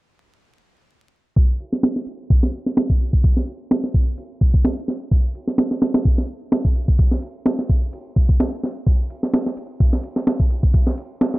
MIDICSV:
0, 0, Header, 1, 2, 480
1, 0, Start_track
1, 0, Tempo, 468750
1, 1400, Time_signature, 4, 2, 24, 8
1, 11662, End_track
2, 0, Start_track
2, 0, Title_t, "Drums"
2, 1396, Note_on_c, 9, 51, 81
2, 1397, Note_on_c, 9, 36, 104
2, 1499, Note_off_c, 9, 51, 0
2, 1500, Note_off_c, 9, 36, 0
2, 1637, Note_on_c, 9, 51, 65
2, 1740, Note_off_c, 9, 51, 0
2, 1767, Note_on_c, 9, 38, 48
2, 1870, Note_off_c, 9, 38, 0
2, 1876, Note_on_c, 9, 38, 112
2, 1876, Note_on_c, 9, 46, 80
2, 1979, Note_off_c, 9, 38, 0
2, 1979, Note_off_c, 9, 46, 0
2, 2008, Note_on_c, 9, 38, 44
2, 2110, Note_off_c, 9, 38, 0
2, 2117, Note_on_c, 9, 51, 68
2, 2219, Note_off_c, 9, 51, 0
2, 2357, Note_on_c, 9, 36, 109
2, 2357, Note_on_c, 9, 51, 82
2, 2459, Note_off_c, 9, 36, 0
2, 2460, Note_off_c, 9, 51, 0
2, 2487, Note_on_c, 9, 38, 42
2, 2590, Note_off_c, 9, 38, 0
2, 2597, Note_on_c, 9, 51, 66
2, 2700, Note_off_c, 9, 51, 0
2, 2727, Note_on_c, 9, 38, 46
2, 2830, Note_off_c, 9, 38, 0
2, 2836, Note_on_c, 9, 38, 113
2, 2836, Note_on_c, 9, 51, 86
2, 2939, Note_off_c, 9, 38, 0
2, 2939, Note_off_c, 9, 51, 0
2, 2966, Note_on_c, 9, 36, 93
2, 3068, Note_off_c, 9, 36, 0
2, 3078, Note_on_c, 9, 51, 68
2, 3180, Note_off_c, 9, 51, 0
2, 3206, Note_on_c, 9, 36, 87
2, 3308, Note_off_c, 9, 36, 0
2, 3316, Note_on_c, 9, 51, 83
2, 3317, Note_on_c, 9, 36, 100
2, 3419, Note_off_c, 9, 36, 0
2, 3419, Note_off_c, 9, 51, 0
2, 3448, Note_on_c, 9, 38, 37
2, 3550, Note_off_c, 9, 38, 0
2, 3555, Note_on_c, 9, 51, 66
2, 3658, Note_off_c, 9, 51, 0
2, 3798, Note_on_c, 9, 38, 116
2, 3798, Note_on_c, 9, 51, 85
2, 3901, Note_off_c, 9, 38, 0
2, 3901, Note_off_c, 9, 51, 0
2, 3929, Note_on_c, 9, 38, 46
2, 4031, Note_off_c, 9, 38, 0
2, 4037, Note_on_c, 9, 36, 94
2, 4037, Note_on_c, 9, 51, 67
2, 4139, Note_off_c, 9, 36, 0
2, 4139, Note_off_c, 9, 51, 0
2, 4277, Note_on_c, 9, 51, 83
2, 4380, Note_off_c, 9, 51, 0
2, 4517, Note_on_c, 9, 36, 96
2, 4517, Note_on_c, 9, 51, 67
2, 4619, Note_off_c, 9, 36, 0
2, 4619, Note_off_c, 9, 51, 0
2, 4647, Note_on_c, 9, 36, 90
2, 4749, Note_off_c, 9, 36, 0
2, 4757, Note_on_c, 9, 38, 113
2, 4757, Note_on_c, 9, 51, 83
2, 4859, Note_off_c, 9, 38, 0
2, 4859, Note_off_c, 9, 51, 0
2, 4998, Note_on_c, 9, 38, 39
2, 4998, Note_on_c, 9, 51, 66
2, 5101, Note_off_c, 9, 38, 0
2, 5101, Note_off_c, 9, 51, 0
2, 5237, Note_on_c, 9, 36, 103
2, 5238, Note_on_c, 9, 51, 84
2, 5339, Note_off_c, 9, 36, 0
2, 5340, Note_off_c, 9, 51, 0
2, 5479, Note_on_c, 9, 51, 65
2, 5581, Note_off_c, 9, 51, 0
2, 5606, Note_on_c, 9, 38, 48
2, 5709, Note_off_c, 9, 38, 0
2, 5715, Note_on_c, 9, 38, 118
2, 5715, Note_on_c, 9, 46, 78
2, 5817, Note_off_c, 9, 38, 0
2, 5817, Note_off_c, 9, 46, 0
2, 5847, Note_on_c, 9, 38, 46
2, 5949, Note_off_c, 9, 38, 0
2, 5957, Note_on_c, 9, 38, 102
2, 5957, Note_on_c, 9, 46, 70
2, 6059, Note_off_c, 9, 38, 0
2, 6059, Note_off_c, 9, 46, 0
2, 6084, Note_on_c, 9, 38, 104
2, 6084, Note_on_c, 9, 46, 69
2, 6186, Note_off_c, 9, 38, 0
2, 6186, Note_off_c, 9, 46, 0
2, 6196, Note_on_c, 9, 51, 86
2, 6197, Note_on_c, 9, 36, 108
2, 6298, Note_off_c, 9, 51, 0
2, 6299, Note_off_c, 9, 36, 0
2, 6329, Note_on_c, 9, 38, 44
2, 6431, Note_off_c, 9, 38, 0
2, 6676, Note_on_c, 9, 38, 115
2, 6676, Note_on_c, 9, 51, 86
2, 6778, Note_off_c, 9, 38, 0
2, 6778, Note_off_c, 9, 51, 0
2, 6807, Note_on_c, 9, 36, 90
2, 6910, Note_off_c, 9, 36, 0
2, 6917, Note_on_c, 9, 51, 66
2, 7019, Note_off_c, 9, 51, 0
2, 7047, Note_on_c, 9, 36, 89
2, 7149, Note_off_c, 9, 36, 0
2, 7153, Note_on_c, 9, 51, 81
2, 7156, Note_on_c, 9, 36, 107
2, 7256, Note_off_c, 9, 51, 0
2, 7259, Note_off_c, 9, 36, 0
2, 7285, Note_on_c, 9, 38, 38
2, 7387, Note_off_c, 9, 38, 0
2, 7395, Note_on_c, 9, 51, 68
2, 7498, Note_off_c, 9, 51, 0
2, 7635, Note_on_c, 9, 38, 116
2, 7635, Note_on_c, 9, 51, 85
2, 7737, Note_off_c, 9, 38, 0
2, 7737, Note_off_c, 9, 51, 0
2, 7770, Note_on_c, 9, 38, 49
2, 7872, Note_off_c, 9, 38, 0
2, 7878, Note_on_c, 9, 36, 91
2, 7879, Note_on_c, 9, 51, 68
2, 7981, Note_off_c, 9, 36, 0
2, 7981, Note_off_c, 9, 51, 0
2, 8119, Note_on_c, 9, 51, 84
2, 8222, Note_off_c, 9, 51, 0
2, 8358, Note_on_c, 9, 36, 95
2, 8360, Note_on_c, 9, 51, 68
2, 8461, Note_off_c, 9, 36, 0
2, 8463, Note_off_c, 9, 51, 0
2, 8488, Note_on_c, 9, 36, 92
2, 8591, Note_off_c, 9, 36, 0
2, 8601, Note_on_c, 9, 38, 115
2, 8601, Note_on_c, 9, 51, 87
2, 8703, Note_off_c, 9, 38, 0
2, 8703, Note_off_c, 9, 51, 0
2, 8842, Note_on_c, 9, 38, 38
2, 8842, Note_on_c, 9, 51, 67
2, 8945, Note_off_c, 9, 38, 0
2, 8945, Note_off_c, 9, 51, 0
2, 9078, Note_on_c, 9, 36, 102
2, 9079, Note_on_c, 9, 51, 83
2, 9181, Note_off_c, 9, 36, 0
2, 9182, Note_off_c, 9, 51, 0
2, 9320, Note_on_c, 9, 51, 65
2, 9422, Note_off_c, 9, 51, 0
2, 9452, Note_on_c, 9, 38, 48
2, 9554, Note_off_c, 9, 38, 0
2, 9559, Note_on_c, 9, 38, 112
2, 9559, Note_on_c, 9, 46, 76
2, 9661, Note_off_c, 9, 38, 0
2, 9661, Note_off_c, 9, 46, 0
2, 9690, Note_on_c, 9, 38, 47
2, 9792, Note_off_c, 9, 38, 0
2, 9799, Note_on_c, 9, 51, 68
2, 9902, Note_off_c, 9, 51, 0
2, 10037, Note_on_c, 9, 36, 104
2, 10037, Note_on_c, 9, 51, 86
2, 10139, Note_off_c, 9, 51, 0
2, 10140, Note_off_c, 9, 36, 0
2, 10167, Note_on_c, 9, 38, 44
2, 10270, Note_off_c, 9, 38, 0
2, 10275, Note_on_c, 9, 51, 67
2, 10377, Note_off_c, 9, 51, 0
2, 10405, Note_on_c, 9, 38, 48
2, 10508, Note_off_c, 9, 38, 0
2, 10516, Note_on_c, 9, 38, 108
2, 10516, Note_on_c, 9, 51, 83
2, 10619, Note_off_c, 9, 38, 0
2, 10619, Note_off_c, 9, 51, 0
2, 10646, Note_on_c, 9, 36, 95
2, 10749, Note_off_c, 9, 36, 0
2, 10756, Note_on_c, 9, 51, 66
2, 10858, Note_off_c, 9, 51, 0
2, 10886, Note_on_c, 9, 36, 90
2, 10989, Note_off_c, 9, 36, 0
2, 10996, Note_on_c, 9, 51, 84
2, 10997, Note_on_c, 9, 36, 103
2, 11098, Note_off_c, 9, 51, 0
2, 11099, Note_off_c, 9, 36, 0
2, 11128, Note_on_c, 9, 38, 38
2, 11230, Note_off_c, 9, 38, 0
2, 11239, Note_on_c, 9, 51, 65
2, 11342, Note_off_c, 9, 51, 0
2, 11479, Note_on_c, 9, 38, 117
2, 11479, Note_on_c, 9, 51, 86
2, 11582, Note_off_c, 9, 38, 0
2, 11582, Note_off_c, 9, 51, 0
2, 11611, Note_on_c, 9, 38, 48
2, 11662, Note_off_c, 9, 38, 0
2, 11662, End_track
0, 0, End_of_file